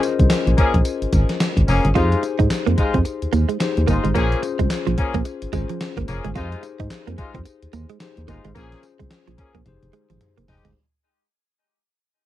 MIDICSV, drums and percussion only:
0, 0, Header, 1, 2, 480
1, 0, Start_track
1, 0, Key_signature, -4, "minor"
1, 0, Tempo, 550459
1, 1704, Time_signature, 4, 2, 24, 8
1, 10688, End_track
2, 0, Start_track
2, 0, Title_t, "Drums"
2, 27, Note_on_c, 9, 42, 75
2, 28, Note_on_c, 9, 54, 75
2, 114, Note_off_c, 9, 42, 0
2, 115, Note_off_c, 9, 54, 0
2, 169, Note_on_c, 9, 42, 56
2, 170, Note_on_c, 9, 36, 97
2, 257, Note_off_c, 9, 36, 0
2, 257, Note_off_c, 9, 42, 0
2, 260, Note_on_c, 9, 38, 112
2, 260, Note_on_c, 9, 54, 94
2, 261, Note_on_c, 9, 42, 75
2, 268, Note_on_c, 9, 39, 88
2, 347, Note_off_c, 9, 38, 0
2, 347, Note_off_c, 9, 54, 0
2, 348, Note_off_c, 9, 42, 0
2, 355, Note_off_c, 9, 39, 0
2, 412, Note_on_c, 9, 42, 51
2, 499, Note_off_c, 9, 42, 0
2, 505, Note_on_c, 9, 42, 78
2, 507, Note_on_c, 9, 36, 99
2, 592, Note_off_c, 9, 42, 0
2, 594, Note_off_c, 9, 36, 0
2, 647, Note_on_c, 9, 36, 104
2, 648, Note_on_c, 9, 42, 50
2, 734, Note_off_c, 9, 36, 0
2, 735, Note_off_c, 9, 42, 0
2, 740, Note_on_c, 9, 54, 77
2, 742, Note_on_c, 9, 42, 95
2, 828, Note_off_c, 9, 54, 0
2, 830, Note_off_c, 9, 42, 0
2, 890, Note_on_c, 9, 42, 56
2, 977, Note_off_c, 9, 42, 0
2, 982, Note_on_c, 9, 42, 75
2, 982, Note_on_c, 9, 54, 73
2, 983, Note_on_c, 9, 36, 103
2, 1069, Note_off_c, 9, 42, 0
2, 1069, Note_off_c, 9, 54, 0
2, 1070, Note_off_c, 9, 36, 0
2, 1126, Note_on_c, 9, 42, 63
2, 1129, Note_on_c, 9, 38, 74
2, 1214, Note_off_c, 9, 42, 0
2, 1216, Note_off_c, 9, 38, 0
2, 1222, Note_on_c, 9, 54, 83
2, 1223, Note_on_c, 9, 42, 87
2, 1224, Note_on_c, 9, 38, 109
2, 1232, Note_on_c, 9, 39, 83
2, 1309, Note_off_c, 9, 54, 0
2, 1310, Note_off_c, 9, 42, 0
2, 1311, Note_off_c, 9, 38, 0
2, 1319, Note_off_c, 9, 39, 0
2, 1367, Note_on_c, 9, 36, 92
2, 1371, Note_on_c, 9, 42, 58
2, 1454, Note_off_c, 9, 36, 0
2, 1459, Note_off_c, 9, 42, 0
2, 1465, Note_on_c, 9, 54, 70
2, 1466, Note_on_c, 9, 46, 86
2, 1552, Note_off_c, 9, 54, 0
2, 1554, Note_off_c, 9, 46, 0
2, 1610, Note_on_c, 9, 42, 69
2, 1698, Note_off_c, 9, 42, 0
2, 1705, Note_on_c, 9, 36, 115
2, 1706, Note_on_c, 9, 42, 76
2, 1706, Note_on_c, 9, 54, 64
2, 1792, Note_off_c, 9, 36, 0
2, 1793, Note_off_c, 9, 42, 0
2, 1793, Note_off_c, 9, 54, 0
2, 1850, Note_on_c, 9, 42, 53
2, 1937, Note_off_c, 9, 42, 0
2, 1945, Note_on_c, 9, 42, 74
2, 1946, Note_on_c, 9, 54, 74
2, 2032, Note_off_c, 9, 42, 0
2, 2033, Note_off_c, 9, 54, 0
2, 2088, Note_on_c, 9, 36, 104
2, 2090, Note_on_c, 9, 42, 60
2, 2176, Note_off_c, 9, 36, 0
2, 2177, Note_off_c, 9, 42, 0
2, 2182, Note_on_c, 9, 38, 120
2, 2182, Note_on_c, 9, 54, 107
2, 2183, Note_on_c, 9, 42, 73
2, 2190, Note_on_c, 9, 39, 90
2, 2269, Note_off_c, 9, 38, 0
2, 2269, Note_off_c, 9, 54, 0
2, 2270, Note_off_c, 9, 42, 0
2, 2277, Note_off_c, 9, 39, 0
2, 2330, Note_on_c, 9, 42, 53
2, 2417, Note_off_c, 9, 42, 0
2, 2422, Note_on_c, 9, 42, 83
2, 2425, Note_on_c, 9, 36, 95
2, 2509, Note_off_c, 9, 42, 0
2, 2512, Note_off_c, 9, 36, 0
2, 2565, Note_on_c, 9, 36, 99
2, 2565, Note_on_c, 9, 42, 54
2, 2652, Note_off_c, 9, 36, 0
2, 2652, Note_off_c, 9, 42, 0
2, 2661, Note_on_c, 9, 54, 75
2, 2663, Note_on_c, 9, 42, 94
2, 2748, Note_off_c, 9, 54, 0
2, 2750, Note_off_c, 9, 42, 0
2, 2809, Note_on_c, 9, 42, 56
2, 2896, Note_off_c, 9, 42, 0
2, 2901, Note_on_c, 9, 42, 72
2, 2902, Note_on_c, 9, 54, 69
2, 2989, Note_off_c, 9, 42, 0
2, 2989, Note_off_c, 9, 54, 0
2, 3046, Note_on_c, 9, 42, 60
2, 3133, Note_off_c, 9, 42, 0
2, 3141, Note_on_c, 9, 54, 91
2, 3142, Note_on_c, 9, 42, 79
2, 3143, Note_on_c, 9, 38, 102
2, 3151, Note_on_c, 9, 39, 87
2, 3228, Note_off_c, 9, 54, 0
2, 3229, Note_off_c, 9, 42, 0
2, 3230, Note_off_c, 9, 38, 0
2, 3238, Note_off_c, 9, 39, 0
2, 3289, Note_on_c, 9, 42, 53
2, 3376, Note_off_c, 9, 42, 0
2, 3381, Note_on_c, 9, 54, 67
2, 3382, Note_on_c, 9, 36, 91
2, 3382, Note_on_c, 9, 42, 92
2, 3468, Note_off_c, 9, 54, 0
2, 3469, Note_off_c, 9, 36, 0
2, 3470, Note_off_c, 9, 42, 0
2, 3528, Note_on_c, 9, 42, 70
2, 3615, Note_off_c, 9, 42, 0
2, 3622, Note_on_c, 9, 42, 88
2, 3622, Note_on_c, 9, 54, 71
2, 3623, Note_on_c, 9, 36, 126
2, 3710, Note_off_c, 9, 36, 0
2, 3710, Note_off_c, 9, 42, 0
2, 3710, Note_off_c, 9, 54, 0
2, 3768, Note_on_c, 9, 42, 51
2, 3856, Note_off_c, 9, 42, 0
2, 3862, Note_on_c, 9, 42, 83
2, 3863, Note_on_c, 9, 54, 72
2, 3950, Note_off_c, 9, 42, 0
2, 3951, Note_off_c, 9, 54, 0
2, 4006, Note_on_c, 9, 42, 61
2, 4007, Note_on_c, 9, 36, 108
2, 4093, Note_off_c, 9, 42, 0
2, 4094, Note_off_c, 9, 36, 0
2, 4099, Note_on_c, 9, 38, 126
2, 4099, Note_on_c, 9, 54, 101
2, 4100, Note_on_c, 9, 42, 75
2, 4107, Note_on_c, 9, 39, 96
2, 4186, Note_off_c, 9, 38, 0
2, 4186, Note_off_c, 9, 54, 0
2, 4187, Note_off_c, 9, 42, 0
2, 4194, Note_off_c, 9, 39, 0
2, 4248, Note_on_c, 9, 42, 52
2, 4335, Note_off_c, 9, 42, 0
2, 4340, Note_on_c, 9, 42, 79
2, 4344, Note_on_c, 9, 36, 99
2, 4427, Note_off_c, 9, 42, 0
2, 4431, Note_off_c, 9, 36, 0
2, 4484, Note_on_c, 9, 36, 102
2, 4485, Note_on_c, 9, 42, 51
2, 4572, Note_off_c, 9, 36, 0
2, 4572, Note_off_c, 9, 42, 0
2, 4578, Note_on_c, 9, 54, 77
2, 4580, Note_on_c, 9, 42, 86
2, 4666, Note_off_c, 9, 54, 0
2, 4668, Note_off_c, 9, 42, 0
2, 4726, Note_on_c, 9, 42, 59
2, 4813, Note_off_c, 9, 42, 0
2, 4820, Note_on_c, 9, 42, 71
2, 4821, Note_on_c, 9, 36, 101
2, 4821, Note_on_c, 9, 54, 73
2, 4908, Note_off_c, 9, 36, 0
2, 4908, Note_off_c, 9, 42, 0
2, 4908, Note_off_c, 9, 54, 0
2, 4966, Note_on_c, 9, 42, 61
2, 5053, Note_off_c, 9, 42, 0
2, 5063, Note_on_c, 9, 42, 84
2, 5063, Note_on_c, 9, 54, 82
2, 5064, Note_on_c, 9, 38, 101
2, 5072, Note_on_c, 9, 39, 83
2, 5150, Note_off_c, 9, 42, 0
2, 5150, Note_off_c, 9, 54, 0
2, 5152, Note_off_c, 9, 38, 0
2, 5160, Note_off_c, 9, 39, 0
2, 5205, Note_on_c, 9, 36, 90
2, 5211, Note_on_c, 9, 42, 54
2, 5293, Note_off_c, 9, 36, 0
2, 5298, Note_off_c, 9, 42, 0
2, 5301, Note_on_c, 9, 54, 69
2, 5303, Note_on_c, 9, 42, 85
2, 5389, Note_off_c, 9, 54, 0
2, 5390, Note_off_c, 9, 42, 0
2, 5446, Note_on_c, 9, 42, 63
2, 5533, Note_off_c, 9, 42, 0
2, 5542, Note_on_c, 9, 42, 81
2, 5542, Note_on_c, 9, 54, 70
2, 5543, Note_on_c, 9, 36, 115
2, 5629, Note_off_c, 9, 42, 0
2, 5629, Note_off_c, 9, 54, 0
2, 5630, Note_off_c, 9, 36, 0
2, 5688, Note_on_c, 9, 42, 53
2, 5775, Note_off_c, 9, 42, 0
2, 5782, Note_on_c, 9, 42, 77
2, 5783, Note_on_c, 9, 54, 75
2, 5869, Note_off_c, 9, 42, 0
2, 5870, Note_off_c, 9, 54, 0
2, 5927, Note_on_c, 9, 36, 104
2, 5928, Note_on_c, 9, 42, 60
2, 6014, Note_off_c, 9, 36, 0
2, 6015, Note_off_c, 9, 42, 0
2, 6019, Note_on_c, 9, 38, 116
2, 6019, Note_on_c, 9, 54, 101
2, 6020, Note_on_c, 9, 42, 73
2, 6028, Note_on_c, 9, 39, 99
2, 6107, Note_off_c, 9, 38, 0
2, 6107, Note_off_c, 9, 54, 0
2, 6108, Note_off_c, 9, 42, 0
2, 6115, Note_off_c, 9, 39, 0
2, 6170, Note_on_c, 9, 42, 52
2, 6257, Note_off_c, 9, 42, 0
2, 6262, Note_on_c, 9, 42, 74
2, 6265, Note_on_c, 9, 36, 102
2, 6350, Note_off_c, 9, 42, 0
2, 6352, Note_off_c, 9, 36, 0
2, 6405, Note_on_c, 9, 36, 101
2, 6407, Note_on_c, 9, 42, 55
2, 6492, Note_off_c, 9, 36, 0
2, 6495, Note_off_c, 9, 42, 0
2, 6499, Note_on_c, 9, 54, 77
2, 6501, Note_on_c, 9, 42, 95
2, 6586, Note_off_c, 9, 54, 0
2, 6588, Note_off_c, 9, 42, 0
2, 6649, Note_on_c, 9, 42, 54
2, 6736, Note_off_c, 9, 42, 0
2, 6741, Note_on_c, 9, 42, 76
2, 6741, Note_on_c, 9, 54, 72
2, 6828, Note_off_c, 9, 42, 0
2, 6829, Note_off_c, 9, 54, 0
2, 6884, Note_on_c, 9, 42, 57
2, 6971, Note_off_c, 9, 42, 0
2, 6977, Note_on_c, 9, 42, 85
2, 6977, Note_on_c, 9, 54, 83
2, 6979, Note_on_c, 9, 38, 110
2, 6987, Note_on_c, 9, 39, 88
2, 7064, Note_off_c, 9, 54, 0
2, 7065, Note_off_c, 9, 42, 0
2, 7066, Note_off_c, 9, 38, 0
2, 7074, Note_off_c, 9, 39, 0
2, 7126, Note_on_c, 9, 42, 60
2, 7213, Note_off_c, 9, 42, 0
2, 7220, Note_on_c, 9, 54, 73
2, 7221, Note_on_c, 9, 36, 91
2, 7222, Note_on_c, 9, 42, 86
2, 7307, Note_off_c, 9, 54, 0
2, 7308, Note_off_c, 9, 36, 0
2, 7309, Note_off_c, 9, 42, 0
2, 7365, Note_on_c, 9, 42, 65
2, 7452, Note_off_c, 9, 42, 0
2, 7460, Note_on_c, 9, 42, 86
2, 7460, Note_on_c, 9, 54, 73
2, 7462, Note_on_c, 9, 36, 118
2, 7548, Note_off_c, 9, 42, 0
2, 7548, Note_off_c, 9, 54, 0
2, 7549, Note_off_c, 9, 36, 0
2, 7606, Note_on_c, 9, 38, 71
2, 7606, Note_on_c, 9, 42, 54
2, 7693, Note_off_c, 9, 38, 0
2, 7693, Note_off_c, 9, 42, 0
2, 7701, Note_on_c, 9, 42, 83
2, 7702, Note_on_c, 9, 54, 73
2, 7788, Note_off_c, 9, 42, 0
2, 7789, Note_off_c, 9, 54, 0
2, 7846, Note_on_c, 9, 36, 95
2, 7847, Note_on_c, 9, 42, 54
2, 7933, Note_off_c, 9, 36, 0
2, 7935, Note_off_c, 9, 42, 0
2, 7940, Note_on_c, 9, 38, 119
2, 7940, Note_on_c, 9, 54, 94
2, 7941, Note_on_c, 9, 42, 72
2, 7948, Note_on_c, 9, 39, 92
2, 8027, Note_off_c, 9, 38, 0
2, 8027, Note_off_c, 9, 54, 0
2, 8028, Note_off_c, 9, 42, 0
2, 8035, Note_off_c, 9, 39, 0
2, 8089, Note_on_c, 9, 42, 53
2, 8176, Note_off_c, 9, 42, 0
2, 8181, Note_on_c, 9, 42, 79
2, 8184, Note_on_c, 9, 36, 99
2, 8268, Note_off_c, 9, 42, 0
2, 8271, Note_off_c, 9, 36, 0
2, 8324, Note_on_c, 9, 36, 97
2, 8326, Note_on_c, 9, 42, 52
2, 8411, Note_off_c, 9, 36, 0
2, 8413, Note_off_c, 9, 42, 0
2, 8421, Note_on_c, 9, 42, 89
2, 8422, Note_on_c, 9, 48, 70
2, 8508, Note_off_c, 9, 42, 0
2, 8509, Note_off_c, 9, 48, 0
2, 8567, Note_on_c, 9, 48, 60
2, 8569, Note_on_c, 9, 42, 51
2, 8654, Note_off_c, 9, 48, 0
2, 8657, Note_off_c, 9, 42, 0
2, 8661, Note_on_c, 9, 42, 76
2, 8748, Note_off_c, 9, 42, 0
2, 8806, Note_on_c, 9, 42, 64
2, 8806, Note_on_c, 9, 47, 75
2, 8893, Note_off_c, 9, 42, 0
2, 8894, Note_off_c, 9, 47, 0
2, 8901, Note_on_c, 9, 42, 80
2, 8902, Note_on_c, 9, 45, 91
2, 8988, Note_off_c, 9, 42, 0
2, 8989, Note_off_c, 9, 45, 0
2, 9050, Note_on_c, 9, 42, 57
2, 9137, Note_off_c, 9, 42, 0
2, 9141, Note_on_c, 9, 43, 103
2, 9142, Note_on_c, 9, 46, 89
2, 9229, Note_off_c, 9, 43, 0
2, 9229, Note_off_c, 9, 46, 0
2, 9286, Note_on_c, 9, 42, 64
2, 9286, Note_on_c, 9, 43, 97
2, 9373, Note_off_c, 9, 42, 0
2, 9373, Note_off_c, 9, 43, 0
2, 10688, End_track
0, 0, End_of_file